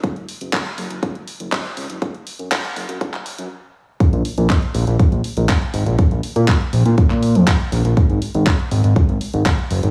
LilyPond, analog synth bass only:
\new Staff \with { instrumentName = "Analog synth bass" } { \clef bass \time 4/4 \key bes \minor \tempo 4 = 121 r16 ges,,16 r16 ges,,16 r8 ges,,16 ges,,16 r16 ges,,16 r16 ges,,16 r8 des,16 ges,,16 | r16 ges,,16 r16 ges,16 r8 ges,,16 ges,16 r16 ges,,16 r16 ges,16 r4 | r16 bes,,16 r16 bes,,16 r8 bes,,16 bes,,16 r16 bes,,16 r16 bes,,16 r8 aes,,16 bes,,16 | r16 bes,,16 r16 bes,16 r8 bes,,16 bes,16 r16 bes,8 f,16 r8 bes,,16 bes,,16 |
r16 aes,,16 r16 aes,,16 r8 aes,,16 aes,,16 r16 aes,,16 r16 aes,,16 r8 ges,,16 aes,,16 | }